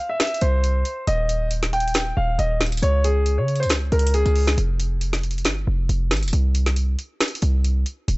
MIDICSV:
0, 0, Header, 1, 4, 480
1, 0, Start_track
1, 0, Tempo, 437956
1, 1177, Time_signature, 4, 2, 24, 8
1, 8960, End_track
2, 0, Start_track
2, 0, Title_t, "Grand piano"
2, 0, Program_c, 0, 0
2, 103, Note_on_c, 0, 76, 82
2, 199, Note_off_c, 0, 76, 0
2, 216, Note_on_c, 0, 76, 89
2, 443, Note_off_c, 0, 76, 0
2, 455, Note_on_c, 0, 72, 83
2, 1132, Note_off_c, 0, 72, 0
2, 1177, Note_on_c, 0, 75, 96
2, 1628, Note_off_c, 0, 75, 0
2, 1897, Note_on_c, 0, 79, 94
2, 2348, Note_off_c, 0, 79, 0
2, 2376, Note_on_c, 0, 77, 81
2, 2603, Note_off_c, 0, 77, 0
2, 2615, Note_on_c, 0, 75, 80
2, 2843, Note_off_c, 0, 75, 0
2, 3098, Note_on_c, 0, 73, 103
2, 3324, Note_off_c, 0, 73, 0
2, 3336, Note_on_c, 0, 68, 84
2, 3682, Note_off_c, 0, 68, 0
2, 3703, Note_on_c, 0, 73, 73
2, 3930, Note_off_c, 0, 73, 0
2, 3945, Note_on_c, 0, 72, 83
2, 4051, Note_off_c, 0, 72, 0
2, 4298, Note_on_c, 0, 70, 79
2, 4524, Note_off_c, 0, 70, 0
2, 4540, Note_on_c, 0, 68, 88
2, 4990, Note_off_c, 0, 68, 0
2, 8960, End_track
3, 0, Start_track
3, 0, Title_t, "808-style bass"
3, 0, Program_c, 1, 38
3, 458, Note_on_c, 1, 36, 102
3, 918, Note_off_c, 1, 36, 0
3, 1177, Note_on_c, 1, 27, 116
3, 2333, Note_off_c, 1, 27, 0
3, 2378, Note_on_c, 1, 27, 103
3, 2608, Note_off_c, 1, 27, 0
3, 2617, Note_on_c, 1, 27, 107
3, 3078, Note_off_c, 1, 27, 0
3, 3095, Note_on_c, 1, 37, 109
3, 3703, Note_on_c, 1, 49, 103
3, 3720, Note_off_c, 1, 37, 0
3, 4001, Note_on_c, 1, 37, 96
3, 4017, Note_off_c, 1, 49, 0
3, 4282, Note_off_c, 1, 37, 0
3, 4297, Note_on_c, 1, 37, 104
3, 4649, Note_off_c, 1, 37, 0
3, 4665, Note_on_c, 1, 37, 99
3, 5003, Note_off_c, 1, 37, 0
3, 5017, Note_on_c, 1, 29, 110
3, 5977, Note_on_c, 1, 31, 98
3, 5994, Note_off_c, 1, 29, 0
3, 6205, Note_off_c, 1, 31, 0
3, 6218, Note_on_c, 1, 29, 102
3, 6448, Note_off_c, 1, 29, 0
3, 6457, Note_on_c, 1, 29, 108
3, 6697, Note_on_c, 1, 32, 99
3, 6713, Note_off_c, 1, 29, 0
3, 6825, Note_on_c, 1, 29, 100
3, 6841, Note_off_c, 1, 32, 0
3, 6932, Note_off_c, 1, 29, 0
3, 6937, Note_on_c, 1, 36, 111
3, 7628, Note_off_c, 1, 36, 0
3, 8137, Note_on_c, 1, 36, 108
3, 8598, Note_off_c, 1, 36, 0
3, 8856, Note_on_c, 1, 27, 114
3, 8960, Note_off_c, 1, 27, 0
3, 8960, End_track
4, 0, Start_track
4, 0, Title_t, "Drums"
4, 218, Note_on_c, 9, 38, 111
4, 218, Note_on_c, 9, 42, 66
4, 297, Note_off_c, 9, 42, 0
4, 297, Note_on_c, 9, 42, 63
4, 327, Note_off_c, 9, 38, 0
4, 377, Note_off_c, 9, 42, 0
4, 377, Note_on_c, 9, 42, 62
4, 453, Note_off_c, 9, 42, 0
4, 453, Note_on_c, 9, 42, 78
4, 563, Note_off_c, 9, 42, 0
4, 698, Note_on_c, 9, 42, 65
4, 808, Note_off_c, 9, 42, 0
4, 934, Note_on_c, 9, 42, 70
4, 1043, Note_off_c, 9, 42, 0
4, 1178, Note_on_c, 9, 42, 81
4, 1287, Note_off_c, 9, 42, 0
4, 1415, Note_on_c, 9, 42, 85
4, 1525, Note_off_c, 9, 42, 0
4, 1652, Note_on_c, 9, 42, 82
4, 1762, Note_off_c, 9, 42, 0
4, 1783, Note_on_c, 9, 38, 64
4, 1893, Note_off_c, 9, 38, 0
4, 1897, Note_on_c, 9, 42, 48
4, 1977, Note_off_c, 9, 42, 0
4, 1977, Note_on_c, 9, 42, 50
4, 2056, Note_off_c, 9, 42, 0
4, 2056, Note_on_c, 9, 42, 48
4, 2129, Note_off_c, 9, 42, 0
4, 2129, Note_on_c, 9, 42, 75
4, 2136, Note_on_c, 9, 38, 110
4, 2239, Note_off_c, 9, 42, 0
4, 2245, Note_off_c, 9, 38, 0
4, 2618, Note_on_c, 9, 42, 66
4, 2728, Note_off_c, 9, 42, 0
4, 2856, Note_on_c, 9, 38, 98
4, 2857, Note_on_c, 9, 42, 43
4, 2920, Note_off_c, 9, 42, 0
4, 2920, Note_on_c, 9, 42, 53
4, 2966, Note_off_c, 9, 38, 0
4, 2984, Note_off_c, 9, 42, 0
4, 2984, Note_on_c, 9, 42, 63
4, 3041, Note_off_c, 9, 42, 0
4, 3041, Note_on_c, 9, 42, 72
4, 3097, Note_off_c, 9, 42, 0
4, 3097, Note_on_c, 9, 42, 81
4, 3207, Note_off_c, 9, 42, 0
4, 3336, Note_on_c, 9, 42, 85
4, 3445, Note_off_c, 9, 42, 0
4, 3572, Note_on_c, 9, 42, 78
4, 3682, Note_off_c, 9, 42, 0
4, 3816, Note_on_c, 9, 42, 37
4, 3897, Note_off_c, 9, 42, 0
4, 3897, Note_on_c, 9, 42, 46
4, 3976, Note_off_c, 9, 42, 0
4, 3976, Note_on_c, 9, 42, 59
4, 4050, Note_off_c, 9, 42, 0
4, 4050, Note_on_c, 9, 42, 73
4, 4057, Note_on_c, 9, 38, 112
4, 4160, Note_off_c, 9, 42, 0
4, 4166, Note_off_c, 9, 38, 0
4, 4297, Note_on_c, 9, 42, 51
4, 4377, Note_off_c, 9, 42, 0
4, 4377, Note_on_c, 9, 42, 67
4, 4457, Note_off_c, 9, 42, 0
4, 4457, Note_on_c, 9, 42, 90
4, 4537, Note_off_c, 9, 42, 0
4, 4537, Note_on_c, 9, 42, 65
4, 4646, Note_off_c, 9, 42, 0
4, 4665, Note_on_c, 9, 42, 39
4, 4774, Note_on_c, 9, 46, 53
4, 4775, Note_off_c, 9, 42, 0
4, 4884, Note_off_c, 9, 46, 0
4, 4904, Note_on_c, 9, 38, 101
4, 5014, Note_off_c, 9, 38, 0
4, 5018, Note_on_c, 9, 42, 79
4, 5128, Note_off_c, 9, 42, 0
4, 5256, Note_on_c, 9, 42, 87
4, 5366, Note_off_c, 9, 42, 0
4, 5493, Note_on_c, 9, 42, 78
4, 5603, Note_off_c, 9, 42, 0
4, 5624, Note_on_c, 9, 38, 65
4, 5733, Note_off_c, 9, 38, 0
4, 5737, Note_on_c, 9, 42, 49
4, 5817, Note_off_c, 9, 42, 0
4, 5817, Note_on_c, 9, 42, 49
4, 5897, Note_off_c, 9, 42, 0
4, 5897, Note_on_c, 9, 42, 48
4, 5969, Note_off_c, 9, 42, 0
4, 5969, Note_on_c, 9, 42, 75
4, 5976, Note_on_c, 9, 38, 113
4, 6079, Note_off_c, 9, 42, 0
4, 6086, Note_off_c, 9, 38, 0
4, 6458, Note_on_c, 9, 42, 65
4, 6568, Note_off_c, 9, 42, 0
4, 6696, Note_on_c, 9, 38, 99
4, 6697, Note_on_c, 9, 42, 43
4, 6760, Note_off_c, 9, 42, 0
4, 6760, Note_on_c, 9, 42, 53
4, 6806, Note_off_c, 9, 38, 0
4, 6824, Note_off_c, 9, 42, 0
4, 6824, Note_on_c, 9, 42, 62
4, 6880, Note_off_c, 9, 42, 0
4, 6880, Note_on_c, 9, 42, 74
4, 6937, Note_off_c, 9, 42, 0
4, 6937, Note_on_c, 9, 42, 82
4, 7047, Note_off_c, 9, 42, 0
4, 7176, Note_on_c, 9, 42, 83
4, 7286, Note_off_c, 9, 42, 0
4, 7303, Note_on_c, 9, 38, 63
4, 7413, Note_off_c, 9, 38, 0
4, 7413, Note_on_c, 9, 42, 77
4, 7523, Note_off_c, 9, 42, 0
4, 7658, Note_on_c, 9, 42, 59
4, 7767, Note_off_c, 9, 42, 0
4, 7897, Note_on_c, 9, 38, 110
4, 7897, Note_on_c, 9, 42, 63
4, 7977, Note_off_c, 9, 42, 0
4, 7977, Note_on_c, 9, 42, 64
4, 8007, Note_off_c, 9, 38, 0
4, 8057, Note_off_c, 9, 42, 0
4, 8057, Note_on_c, 9, 42, 64
4, 8133, Note_off_c, 9, 42, 0
4, 8133, Note_on_c, 9, 42, 81
4, 8243, Note_off_c, 9, 42, 0
4, 8379, Note_on_c, 9, 42, 67
4, 8488, Note_off_c, 9, 42, 0
4, 8614, Note_on_c, 9, 42, 71
4, 8724, Note_off_c, 9, 42, 0
4, 8859, Note_on_c, 9, 42, 81
4, 8960, Note_off_c, 9, 42, 0
4, 8960, End_track
0, 0, End_of_file